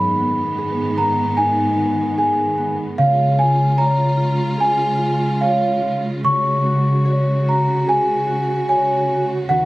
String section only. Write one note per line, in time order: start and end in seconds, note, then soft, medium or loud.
0.00 2.96 G#2 medium
0.00 2.96 D#3 medium
0.00 2.96 B3 medium
2.97 9.65 C#3 medium
2.97 9.45 G#3 medium
2.97 6.20 F4 medium
6.24 9.65 F#4 medium
9.49 9.65 D#2 medium